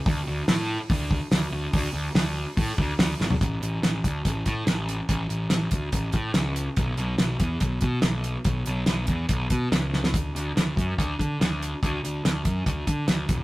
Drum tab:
HH |o---o---o---o---|o---o---o---o---|x-x-x-x-x-x-x-x-|x-x-x-x-x-x-x-x-|
SD |----o-------o---|----o-------o-o-|----o-------o---|----o-------o---|
FT |----------------|---------------o|----------------|----------------|
BD |o-------o-o-----|o-------o-o-----|o-----o-o-o-----|o-----o-o-o-----|

HH |x-x-x-x-x-x-x-x-|x-x-x-x-x-x-x---|x-x-x-x-x-x-x-x-|x-x-x-x-x-x-x-x-|
SD |----o-------o---|----o-------o-oo|----o-------o---|----o-------o---|
FT |----------------|----------------|----------------|----------------|
BD |o-----o-o-o-----|o-----o-o-o-----|o-----o-o-o-----|o-----o-o-o---o-|